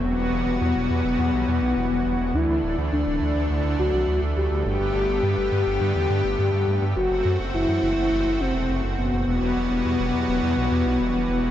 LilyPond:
<<
  \new Staff \with { instrumentName = "Soft synth lead" } { \time 4/4 \key e \minor \tempo 4 = 104 b1 | e'8 r8 d'4. fis'8 r8 g'8~ | g'1 | fis'8 r8 e'4. c'8 r8 b8~ |
b1 | }
  \new Staff \with { instrumentName = "Analog synth pad" } { \time 4/4 \key e \minor << { <fis g b fis'>1 | <a d'>1 | <g b g'>1 | <a c' fis'>1 |
<fis g b fis'>1 | } \\ { e1~ | e1 | d1 | r1 |
e1 | } >> }
  \new Staff \with { instrumentName = "Detuned saw bass" } { \clef bass \time 4/4 \key e \minor e,,16 e,,16 e,,16 e,,16 e,16 e,,16 e,16 e,,16 e,16 b,,16 e,16 b,,16 e,,16 e,,16 e,,16 e,,16 | d,16 d,16 d,,16 d,16 d,16 d,,16 d,16 d,16 d,16 d,16 d,16 c,16 d,16 d,16 d,16 d,16 | g,,16 g,,16 g,,16 g,,16 g,16 g,,16 g,16 g,,16 g,16 e,16 g,16 g,,16 g,16 g,16 g,16 g,16 | fis,,16 fis,,16 fis,16 fis,,16 fis,,16 fis,16 fis,,16 fis,,16 fis,,16 fis,,16 fis,,16 e,,16 fis,,16 fis,,16 fis,,16 fis,,16 |
e,,16 e,,16 e,,16 e,,16 e,16 e,,16 e,16 e,,16 e,16 b,,16 e,16 b,,16 e,,16 e,,16 e,,16 e,,16 | }
>>